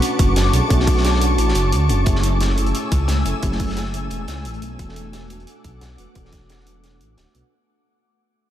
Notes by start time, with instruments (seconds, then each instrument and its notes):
Already playing: tine electric piano A3 C#4 D4 F#4, ambient pad A5 C#6 D6
0.02 closed hi-hat
0.19 detuned saw bass F#1, kick, closed hi-hat
0.36 detuned saw bass F#1, snare, closed hi-hat
0.52 detuned saw bass B1, tine electric piano A3 C#4 D4 G#4, closed hi-hat
0.68 detuned saw bass B1, tine electric piano A3 C#4 D4, kick, closed hi-hat
0.72 tine electric piano F#4
0.80 snare
0.87 kick, closed hi-hat, open hi-hat
0.97 snare
1.05 snare, closed hi-hat
1.14 snare
1.19 tine electric piano A3 C#4 D4, closed hi-hat
1.24 tine electric piano F#4
1.38 detuned saw bass A1, closed hi-hat
1.48 snare
1.55 detuned saw bass F#1, closed hi-hat
1.72 detuned saw bass D2, closed hi-hat
1.88 detuned saw bass F#1, tine electric piano A3 C#4 D4 F#4, closed hi-hat
2.05 detuned saw bass F#1, tine electric piano A3 C#4 E4, ambient pad A3 G#5 E6, kick, closed hi-hat
2.09 tine electric piano G#4
2.15 snare
2.23 closed hi-hat
2.41 snare, closed hi-hat
2.55 tine electric piano A3 C#4 E4, closed hi-hat
2.60 tine electric piano G#4
2.66 closed hi-hat
2.75 closed hi-hat
2.92 detuned saw bass C#2, kick, closed hi-hat
3.08 detuned saw bass C#2, snare, closed hi-hat
3.25 detuned saw bass F#1, tine electric piano A3 C#4 E4 A4, closed hi-hat
3.41 detuned saw bass F#1, tine electric piano A3 C#4 E4, kick, closed hi-hat
3.45 tine electric piano G#4
3.52 snare
3.60 kick, closed hi-hat, open hi-hat
3.70 snare
3.77 snare, closed hi-hat
3.85 snare
3.92 tine electric piano A3 C#4 E4, closed hi-hat
3.96 tine electric piano G#4
4.11 detuned saw bass E1, closed hi-hat
4.28 detuned saw bass C#2, snare, closed hi-hat
4.45 detuned saw bass A1, closed hi-hat
4.54 closed hi-hat
4.61 detuned saw bass B1, tine electric piano A3 C#4 E4 A4, closed hi-hat
4.77 detuned saw bass E1, tine electric piano B3 D4 F#4, ambient pad F#5 D6, kick, closed hi-hat
4.82 tine electric piano A4
4.89 snare
4.96 closed hi-hat
5.13 snare, closed hi-hat
5.28 tine electric piano B3 D4 F#4, closed hi-hat
5.32 tine electric piano A4
5.40 closed hi-hat
5.47 closed hi-hat
5.64 detuned saw bass B1, kick, closed hi-hat
5.81 detuned saw bass B1, snare, closed hi-hat
5.97 detuned saw bass E1, tine electric piano B3 D4 F#4 B4, closed hi-hat
6.13 detuned saw bass E1, tine electric piano B3 D4 F#4, kick, closed hi-hat
6.18 tine electric piano A4
6.25 snare
6.33 kick, snare, closed hi-hat
6.49 snare, closed hi-hat
6.59 snare
6.64 tine electric piano B3 D4 F#4, closed hi-hat
6.69 tine electric piano A4
6.84 snare, closed hi-hat
7.01 detuned saw bass A1, closed hi-hat
7.18 detuned saw bass D1, snare, closed hi-hat
7.34 detuned saw bass B1, tine electric piano B3 D4 F#4 B4, closed hi-hat